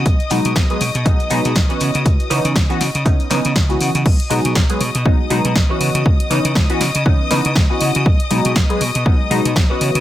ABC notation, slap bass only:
X:1
M:4/4
L:1/16
Q:"Swing 16ths" 1/4=120
K:B
V:1 name="Slap bass" clef=bass
B,,, z B,, B,, B,,, z B,, B,, B,,, z B,, B,, B,,, z C, C, | C,, z C, C, C,, z C, C, C,, z C, C, C,, z C, C, | B,,, z B,, B,, B,,, z B,, B,, B,,, z B,, B,, B,,, z C, C, | C,, z C, C, C,, z C, C, C,, z C, C, C,, z C, C, |
B,,, z B,, B,, B,,, z B,, B,, B,,, z B,, B,, B,,, z C, C, |]